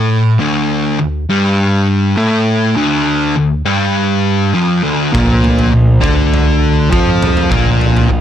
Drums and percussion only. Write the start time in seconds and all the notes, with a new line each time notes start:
5.15 kick, floor tom
5.44 floor tom
5.59 floor tom
6.04 kick, floor tom
6.34 floor tom
6.93 kick
7.22 floor tom, mid tom
7.37 floor tom
7.52 kick, floor tom
7.81 floor tom
7.97 floor tom